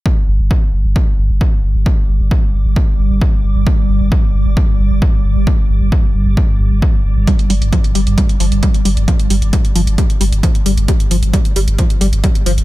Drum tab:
HH |----------------|----------------|----------------|----------------|
BD |o---o---o---o---|o---o---o---o---|o---o---o---o---|o---o---o---o---|

HH |xxoxxxoxxxoxxxox|xxoxxxoxxxoxxxox|xxoxxxoxxxoxxxox|
BD |o---o---o---o---|o---o---o---o---|o---o---o---o---|